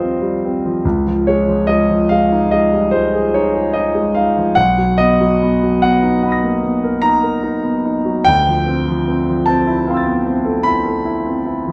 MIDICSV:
0, 0, Header, 1, 2, 480
1, 0, Start_track
1, 0, Tempo, 829876
1, 486, Time_signature, 9, 3, 24, 8
1, 3358, Tempo, 808625
1, 6869, End_track
2, 0, Start_track
2, 0, Title_t, "Grand piano"
2, 0, Program_c, 0, 0
2, 0, Control_c, 0, 64, 127
2, 0, Note_on_c, 0, 39, 42
2, 0, Note_on_c, 0, 53, 28
2, 0, Note_on_c, 0, 55, 29
2, 0, Note_on_c, 0, 60, 32
2, 0, Note_on_c, 0, 65, 33
2, 0, Note_on_c, 0, 72, 56
2, 0, Note_on_c, 0, 75, 69
2, 1, Note_off_c, 0, 60, 0
2, 1, Note_on_c, 0, 60, 33
2, 77, Note_off_c, 0, 65, 0
2, 126, Note_off_c, 0, 55, 0
2, 126, Note_on_c, 0, 55, 31
2, 194, Note_off_c, 0, 60, 0
2, 258, Note_on_c, 0, 60, 31
2, 318, Note_off_c, 0, 55, 0
2, 379, Note_off_c, 0, 53, 0
2, 379, Note_on_c, 0, 53, 29
2, 445, Note_off_c, 0, 60, 0
2, 469, Note_off_c, 0, 39, 0
2, 485, Note_off_c, 0, 72, 0
2, 492, Note_on_c, 0, 37, 43
2, 493, Note_off_c, 0, 53, 0
2, 496, Control_c, 0, 64, 0
2, 499, Note_off_c, 0, 75, 0
2, 606, Control_c, 0, 64, 127
2, 616, Note_on_c, 0, 53, 26
2, 735, Note_on_c, 0, 73, 63
2, 742, Note_on_c, 0, 56, 34
2, 806, Note_off_c, 0, 53, 0
2, 859, Note_on_c, 0, 53, 36
2, 929, Note_off_c, 0, 56, 0
2, 966, Note_on_c, 0, 75, 71
2, 973, Note_off_c, 0, 73, 0
2, 977, Note_on_c, 0, 56, 34
2, 1046, Note_off_c, 0, 53, 0
2, 1098, Note_on_c, 0, 53, 36
2, 1165, Note_off_c, 0, 56, 0
2, 1207, Note_off_c, 0, 75, 0
2, 1210, Note_on_c, 0, 77, 74
2, 1223, Note_on_c, 0, 56, 34
2, 1284, Note_off_c, 0, 53, 0
2, 1344, Note_on_c, 0, 63, 36
2, 1406, Note_off_c, 0, 56, 0
2, 1448, Note_off_c, 0, 77, 0
2, 1454, Note_on_c, 0, 75, 66
2, 1464, Note_on_c, 0, 56, 32
2, 1527, Note_off_c, 0, 63, 0
2, 1581, Note_on_c, 0, 55, 29
2, 1646, Note_off_c, 0, 56, 0
2, 1685, Note_on_c, 0, 72, 64
2, 1689, Note_off_c, 0, 75, 0
2, 1692, Note_off_c, 0, 55, 0
2, 1693, Note_on_c, 0, 56, 32
2, 1817, Note_on_c, 0, 68, 33
2, 1879, Note_off_c, 0, 56, 0
2, 1922, Note_off_c, 0, 72, 0
2, 1933, Note_on_c, 0, 73, 61
2, 1942, Note_on_c, 0, 63, 38
2, 2000, Note_off_c, 0, 68, 0
2, 2047, Note_on_c, 0, 68, 34
2, 2122, Note_off_c, 0, 63, 0
2, 2160, Note_on_c, 0, 75, 61
2, 2165, Note_off_c, 0, 73, 0
2, 2170, Note_on_c, 0, 63, 37
2, 2234, Note_off_c, 0, 68, 0
2, 2285, Note_on_c, 0, 56, 33
2, 2355, Note_off_c, 0, 63, 0
2, 2397, Note_off_c, 0, 75, 0
2, 2398, Note_on_c, 0, 77, 66
2, 2406, Note_on_c, 0, 63, 35
2, 2472, Note_off_c, 0, 56, 0
2, 2528, Note_on_c, 0, 53, 29
2, 2593, Note_off_c, 0, 63, 0
2, 2617, Note_off_c, 0, 37, 0
2, 2633, Note_on_c, 0, 78, 81
2, 2637, Note_off_c, 0, 77, 0
2, 2643, Note_off_c, 0, 53, 0
2, 2643, Note_on_c, 0, 35, 47
2, 2648, Control_c, 0, 64, 0
2, 2754, Control_c, 0, 64, 127
2, 2764, Note_on_c, 0, 54, 28
2, 2877, Note_off_c, 0, 78, 0
2, 2879, Note_on_c, 0, 75, 78
2, 2886, Note_on_c, 0, 59, 40
2, 2954, Note_off_c, 0, 54, 0
2, 3013, Note_on_c, 0, 54, 39
2, 3076, Note_off_c, 0, 59, 0
2, 3137, Note_on_c, 0, 59, 41
2, 3198, Note_off_c, 0, 54, 0
2, 3255, Note_on_c, 0, 54, 34
2, 3320, Note_off_c, 0, 59, 0
2, 3359, Note_off_c, 0, 75, 0
2, 3367, Note_on_c, 0, 78, 76
2, 3377, Note_on_c, 0, 59, 38
2, 3441, Note_off_c, 0, 54, 0
2, 3491, Note_on_c, 0, 63, 36
2, 3563, Note_off_c, 0, 59, 0
2, 3599, Note_off_c, 0, 78, 0
2, 3607, Note_on_c, 0, 59, 32
2, 3608, Note_on_c, 0, 78, 27
2, 3626, Note_on_c, 0, 83, 29
2, 3643, Note_on_c, 0, 87, 30
2, 3663, Note_on_c, 0, 94, 30
2, 3680, Note_off_c, 0, 63, 0
2, 3732, Note_on_c, 0, 58, 30
2, 3797, Note_off_c, 0, 59, 0
2, 3847, Note_off_c, 0, 58, 0
2, 3847, Note_on_c, 0, 59, 34
2, 3971, Note_on_c, 0, 70, 32
2, 4035, Note_off_c, 0, 59, 0
2, 4077, Note_on_c, 0, 82, 80
2, 4085, Note_on_c, 0, 63, 40
2, 4158, Note_off_c, 0, 70, 0
2, 4204, Note_on_c, 0, 70, 36
2, 4276, Note_off_c, 0, 63, 0
2, 4325, Note_on_c, 0, 63, 35
2, 4397, Note_off_c, 0, 70, 0
2, 4444, Note_on_c, 0, 59, 33
2, 4519, Note_off_c, 0, 63, 0
2, 4575, Note_on_c, 0, 63, 34
2, 4640, Note_off_c, 0, 59, 0
2, 4690, Note_on_c, 0, 54, 32
2, 4765, Note_off_c, 0, 63, 0
2, 4788, Note_off_c, 0, 35, 0
2, 4788, Note_off_c, 0, 78, 0
2, 4797, Note_off_c, 0, 83, 0
2, 4805, Note_off_c, 0, 87, 0
2, 4806, Note_on_c, 0, 79, 92
2, 4807, Note_off_c, 0, 82, 0
2, 4810, Note_off_c, 0, 54, 0
2, 4815, Note_off_c, 0, 94, 0
2, 4817, Note_on_c, 0, 38, 47
2, 4820, Control_c, 0, 64, 0
2, 4925, Control_c, 0, 64, 127
2, 4941, Note_on_c, 0, 53, 30
2, 5055, Note_on_c, 0, 60, 36
2, 5127, Note_off_c, 0, 53, 0
2, 5183, Note_on_c, 0, 53, 38
2, 5244, Note_off_c, 0, 60, 0
2, 5301, Note_on_c, 0, 60, 37
2, 5368, Note_off_c, 0, 53, 0
2, 5424, Note_on_c, 0, 53, 33
2, 5485, Note_off_c, 0, 60, 0
2, 5525, Note_off_c, 0, 79, 0
2, 5525, Note_on_c, 0, 81, 70
2, 5535, Note_on_c, 0, 60, 39
2, 5605, Note_off_c, 0, 53, 0
2, 5652, Note_on_c, 0, 64, 40
2, 5718, Note_off_c, 0, 60, 0
2, 5772, Note_on_c, 0, 60, 37
2, 5774, Note_on_c, 0, 77, 33
2, 5793, Note_on_c, 0, 84, 29
2, 5811, Note_on_c, 0, 88, 29
2, 5829, Note_on_c, 0, 93, 28
2, 5834, Note_off_c, 0, 64, 0
2, 5879, Note_on_c, 0, 59, 31
2, 5952, Note_off_c, 0, 60, 0
2, 5994, Note_off_c, 0, 59, 0
2, 6004, Note_on_c, 0, 60, 36
2, 6112, Note_on_c, 0, 69, 37
2, 6188, Note_off_c, 0, 60, 0
2, 6224, Note_on_c, 0, 83, 83
2, 6229, Note_off_c, 0, 81, 0
2, 6240, Note_on_c, 0, 64, 37
2, 6303, Note_off_c, 0, 69, 0
2, 6357, Note_on_c, 0, 69, 36
2, 6428, Note_off_c, 0, 64, 0
2, 6473, Note_on_c, 0, 64, 37
2, 6548, Note_off_c, 0, 69, 0
2, 6599, Note_on_c, 0, 60, 33
2, 6667, Note_off_c, 0, 64, 0
2, 6716, Note_on_c, 0, 64, 32
2, 6791, Note_off_c, 0, 60, 0
2, 6839, Note_on_c, 0, 53, 28
2, 6869, Note_off_c, 0, 38, 0
2, 6869, Note_off_c, 0, 53, 0
2, 6869, Note_off_c, 0, 64, 0
2, 6869, Note_off_c, 0, 77, 0
2, 6869, Note_off_c, 0, 83, 0
2, 6869, Note_off_c, 0, 84, 0
2, 6869, Note_off_c, 0, 88, 0
2, 6869, Note_off_c, 0, 93, 0
2, 6869, End_track
0, 0, End_of_file